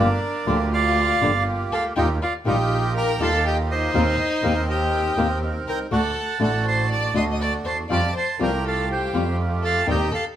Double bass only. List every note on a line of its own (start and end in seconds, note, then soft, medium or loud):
0.00 0.18 G1 medium
0.46 1.17 D2 loud
1.21 1.70 G1 medium
1.71 1.95 C#2 medium
1.96 2.17 D#2 loud
2.45 3.16 A#1 loud
3.20 3.90 D#2 loud
3.94 4.15 D#2 loud
4.43 5.13 D#2 loud
5.17 5.65 D#2 medium
5.66 5.90 C2 medium
5.91 6.11 D2 medium
6.40 7.11 A1 loud
7.14 7.64 D2 loud
7.64 7.89 D#2 medium
7.89 8.11 F2 medium
8.39 9.10 C2 loud
9.13 9.84 F2 loud
9.87 10.08 D#2 loud